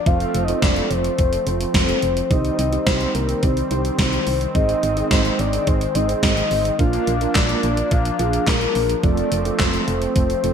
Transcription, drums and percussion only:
0.06 kick, closed hi-hat
0.20 closed hi-hat
0.35 closed hi-hat
0.48 closed hi-hat
0.62 kick, snare, closed hi-hat
0.76 closed hi-hat
0.91 closed hi-hat
1.04 closed hi-hat
1.18 kick, closed hi-hat
1.33 closed hi-hat
1.47 closed hi-hat
1.61 closed hi-hat
1.74 kick, snare, closed hi-hat
1.89 closed hi-hat
2.02 closed hi-hat
2.17 closed hi-hat
2.31 kick, closed hi-hat
2.45 closed hi-hat
2.59 closed hi-hat
2.73 closed hi-hat
2.87 kick, snare, closed hi-hat
3.01 closed hi-hat
3.15 closed hi-hat
3.29 closed hi-hat
3.43 kick, closed hi-hat
3.57 closed hi-hat
3.71 closed hi-hat
3.85 closed hi-hat
3.99 kick, snare, closed hi-hat
4.13 closed hi-hat
4.27 open hi-hat
4.41 closed hi-hat
4.55 kick, closed hi-hat
4.69 closed hi-hat
4.83 closed hi-hat
4.97 closed hi-hat
5.11 kick, snare, closed hi-hat
5.25 closed hi-hat
5.39 closed hi-hat
5.53 closed hi-hat
5.67 kick, closed hi-hat
5.81 closed hi-hat
5.95 closed hi-hat
6.09 closed hi-hat
6.23 kick, snare, closed hi-hat
6.37 closed hi-hat
6.51 open hi-hat
6.65 closed hi-hat
6.79 kick, closed hi-hat
6.93 closed hi-hat
7.07 closed hi-hat
7.21 closed hi-hat
7.35 kick, snare, clap, closed hi-hat
7.49 closed hi-hat
7.63 closed hi-hat
7.77 closed hi-hat
7.91 kick, closed hi-hat
8.05 closed hi-hat
8.19 closed hi-hat
8.33 closed hi-hat
8.47 kick, snare, clap, closed hi-hat
8.61 closed hi-hat
8.75 open hi-hat
8.90 closed hi-hat
9.04 kick, closed hi-hat
9.17 closed hi-hat
9.32 closed hi-hat
9.45 closed hi-hat
9.60 kick, snare, clap, closed hi-hat
9.74 closed hi-hat
9.88 closed hi-hat
10.02 closed hi-hat
10.16 kick, closed hi-hat
10.30 closed hi-hat
10.44 closed hi-hat

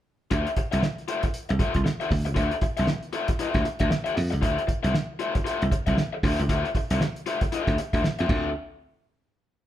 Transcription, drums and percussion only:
0.31 kick, closed hi-hat
0.47 closed hi-hat
0.56 kick, closed hi-hat
0.72 closed hi-hat
0.83 snare
0.98 closed hi-hat
1.08 closed hi-hat
1.23 kick, snare, closed hi-hat
1.34 closed hi-hat
1.49 closed hi-hat
1.59 kick, snare, closed hi-hat
1.74 kick, closed hi-hat
1.86 snare
2.01 closed hi-hat
2.11 kick, snare, open hi-hat
2.26 closed hi-hat
2.36 kick, closed hi-hat
2.51 closed hi-hat
2.61 kick, closed hi-hat
2.77 closed hi-hat
2.87 snare
3.03 closed hi-hat
3.13 closed hi-hat
3.28 kick, snare, closed hi-hat
3.39 closed hi-hat
3.54 kick, snare, closed hi-hat
3.65 snare, closed hi-hat
3.79 kick, closed hi-hat
3.91 snare
4.06 closed hi-hat
4.17 snare, open hi-hat
4.32 closed hi-hat
4.42 kick, closed hi-hat
4.58 closed hi-hat
4.68 kick, closed hi-hat
4.84 closed hi-hat
4.94 snare
5.19 closed hi-hat
5.35 kick, snare, closed hi-hat
5.46 closed hi-hat
5.62 closed hi-hat
5.72 kick, snare, closed hi-hat
5.87 kick, closed hi-hat
5.98 snare
6.23 kick, snare, open hi-hat
6.40 closed hi-hat
6.49 kick, closed hi-hat
6.65 closed hi-hat
6.75 kick, closed hi-hat
6.90 closed hi-hat
7.01 snare
7.16 closed hi-hat
7.26 closed hi-hat
7.41 kick, snare, closed hi-hat
7.52 closed hi-hat
7.67 kick, snare, closed hi-hat
7.78 snare, closed hi-hat
7.93 kick, closed hi-hat
8.04 snare
8.19 closed hi-hat
8.29 kick, crash

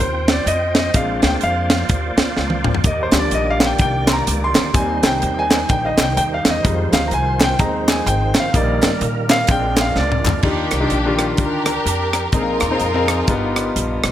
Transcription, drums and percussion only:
0.28 snare, closed hi-hat
0.47 closed hi-hat
0.75 snare, closed hi-hat
0.94 kick, closed hi-hat
1.22 snare, closed hi-hat
1.41 closed hi-hat
1.70 snare, closed hi-hat
1.89 kick, closed hi-hat
2.17 snare, closed hi-hat
2.37 snare
2.50 high tom
2.64 mid tom
2.75 floor tom
2.84 kick, closed hi-hat
3.12 snare, clap, closed hi-hat
3.31 closed hi-hat
3.60 snare, clap, closed hi-hat
3.78 kick, closed hi-hat
4.07 snare, clap, closed hi-hat
4.27 closed hi-hat
4.55 snare, clap, closed hi-hat
4.74 kick, closed hi-hat
5.03 snare, clap, closed hi-hat
5.22 closed hi-hat
5.51 snare, clap, closed hi-hat
5.69 kick, closed hi-hat
5.97 snare, clap, closed hi-hat
6.17 closed hi-hat
6.45 snare, clap, closed hi-hat
6.65 kick, closed hi-hat
6.93 snare, clap, closed hi-hat
7.11 closed hi-hat
7.40 snare, clap, closed hi-hat
7.59 kick, closed hi-hat
7.88 snare, clap, closed hi-hat
8.07 closed hi-hat
8.35 snare, clap, closed hi-hat
8.54 kick, closed hi-hat
8.82 snare, clap, closed hi-hat
9.01 closed hi-hat
9.30 snare, clap, closed hi-hat
9.47 kick, closed hi-hat
9.76 snare, clap, closed hi-hat
9.96 snare
10.12 mid tom
10.26 clap, floor tom
10.42 kick, crash
10.71 cross-stick, closed hi-hat
10.90 closed hi-hat
11.19 cross-stick, closed hi-hat
11.37 kick, closed hi-hat
11.66 cross-stick, closed hi-hat
11.87 closed hi-hat
12.13 cross-stick, closed hi-hat
12.32 kick, closed hi-hat
12.60 cross-stick, closed hi-hat
12.80 closed hi-hat
13.08 cross-stick, closed hi-hat
13.28 kick, closed hi-hat
13.56 cross-stick, closed hi-hat
13.76 closed hi-hat
14.04 cross-stick, closed hi-hat

